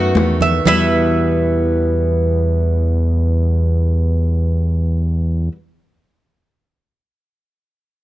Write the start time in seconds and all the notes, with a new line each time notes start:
Already playing: F#2 D#3 A3 B3 F#4
0.15 E2 D#3 A3 B3 F#4, high bongo, low bongo, high conga
0.41 E5, high bongo, low conga
0.65 E2 B2 E3 G3 B3 E4 F#4 B4 E5, low bongo, low conga, claves